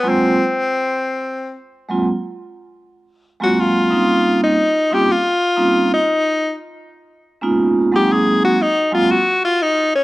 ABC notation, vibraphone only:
X:1
M:4/4
L:1/8
Q:"Swing" 1/4=120
K:Abmix
V:1 name="Vibraphone"
[G,A,B,CF] z6 [G,A,B,CF] | z4 z [G,A,B,CF]2 [=G,B,CDE]- | [=G,B,CDE]2 z [G,B,CDEF] z2 [G,B,CDEF] z | z4 z [A,B,_CDEF]2 [G,A,B,=CE]- |
[G,A,B,CE]2 z [G,A,B,CF] z4 |]